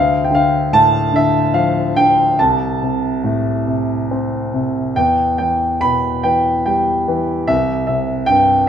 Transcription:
Already playing: D2 F5
0.24 G5
0.31 D3
0.35 F5
0.73 A2 A5
1.13 D3 E5
1.54 F3 F5
1.96 D3 G5
2.39 C2 A5
2.83 C3
3.24 A2
3.66 C3
4.11 C4
4.54 C3
4.96 E2 G5
5.38 E3 G5
5.81 B2 B5
6.23 E3 G5
6.66 G3 G5
7.08 E3
7.47 C2 E5
7.87 C3 E5
8.26 G2 G5

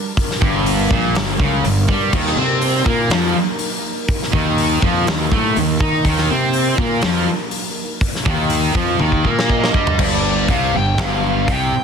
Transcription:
Already playing: G3 D4 A#4
0.17 kick, open hi-hat
0.31 snare
0.42 G1 G2, kick
0.66 open hi-hat
0.91 A#1 A#2, kick
1.15 G1 G2, snare, open hi-hat
1.39 C#2 C#3, kick
1.64 G1 G2, open hi-hat
1.88 G2 G3, kick
2.12 D#2 D#3 A#3 D#4, kick, crash
2.26 snare
2.37 C3 C4
2.62 open hi-hat
2.86 A#2 A#3, kick
3.10 F2 F3, snare, open hi-hat
3.59 open hi-hat
4.08 kick, open hi-hat
4.22 snare
4.33 D#2 D#3, kick
4.58 open hi-hat
4.82 F2 F3, kick
5.07 D#2 D#3, snare, open hi-hat
5.32 A2 A3, kick
5.56 D#2 D#3, open hi-hat
5.80 D#3 D#4, kick
6.05 D#2 D#3, kick, open hi-hat
6.18 snare
6.31 C3 C4
6.53 open hi-hat
6.78 A#2 A#3, kick
7.01 F2 F3, snare, open hi-hat
7.51 open hi-hat
8.01 kick, open hi-hat
8.15 snare
8.26 D#2 D#3, kick
8.50 open hi-hat
8.75 F2 F3, kick
8.99 D#2 D#3, high tom
9.12 kick
9.25 A#2 A#3, kick
9.39 snare
9.50 D#5, kick
9.64 snare
9.74 G2 G3, kick
9.87 floor tom
9.99 G1 G2 D5, kick, crash
10.48 C2 C3 F5, kick, open hi-hat
10.74 G1 G2 G5
10.98 G1 G2, kick, snare, open hi-hat
11.02 F5
11.48 C2 C3, kick, open hi-hat
11.52 G5

